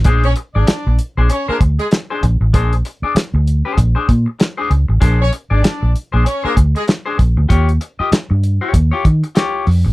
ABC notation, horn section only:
X:1
M:4/4
L:1/16
Q:"Swing 16ths" 1/4=97
K:Bbmix
V:1 name="Horn section"
z [_D_d] z [=D=d]3 z2 [_D_d] [B,B] z [A,A] z4 | z16 | z [_D_d] z [=D=d]3 z2 [_D_d] [B,B] z [A,A] z4 | z16 |]